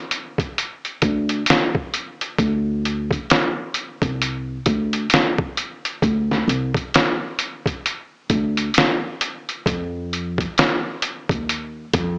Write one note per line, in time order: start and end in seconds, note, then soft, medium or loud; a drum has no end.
0.11 closed hi-hat medium
0.38 kick medium
0.38 closed hi-hat soft
0.58 closed hi-hat medium
0.85 closed hi-hat soft
1.02 1.41 D2 medium
1.02 kick loud
1.02 closed hi-hat medium
1.29 closed hi-hat soft
1.46 snare loud
1.46 closed hi-hat medium
1.75 kick medium
1.94 closed hi-hat medium
2.21 closed hi-hat soft
2.38 3.16 D2 loud
2.38 kick loud
2.38 closed hi-hat medium
2.85 closed hi-hat soft
3.11 kick medium
3.11 closed hi-hat soft
3.30 snare loud
3.30 closed hi-hat medium
3.74 closed hi-hat medium
4.02 4.56 C2 medium
4.02 kick medium
4.02 closed hi-hat soft
4.22 closed hi-hat medium
4.66 5.04 D2 loud
4.66 kick medium
4.66 closed hi-hat medium
4.93 closed hi-hat soft
5.10 snare loud
5.10 closed hi-hat medium
5.38 kick medium
5.57 closed hi-hat medium
5.85 closed hi-hat soft
6.02 6.41 D2 loud
6.02 kick loud
6.02 closed hi-hat medium
6.31 snare soft
6.48 6.70 C2 medium
6.48 closed hi-hat medium
6.74 kick medium
6.74 closed hi-hat soft
6.94 snare loud
6.94 closed hi-hat medium
7.39 closed hi-hat medium
7.66 kick medium
7.66 closed hi-hat medium
7.86 closed hi-hat medium
8.30 8.68 D2 loud
8.30 kick medium
8.30 closed hi-hat medium
8.57 closed hi-hat medium
8.74 snare loud
8.74 closed hi-hat medium
9.21 closed hi-hat medium
9.49 closed hi-hat soft
9.66 10.43 F2 loud
9.66 kick loud
9.66 closed hi-hat medium
10.13 closed hi-hat soft
10.38 kick medium
10.38 closed hi-hat soft
10.58 snare loud
10.58 closed hi-hat medium
11.02 closed hi-hat medium
11.29 11.84 D#2 medium
11.29 kick loud
11.29 closed hi-hat soft
11.49 closed hi-hat medium
11.94 12.18 F2 loud
11.94 kick medium
11.94 closed hi-hat medium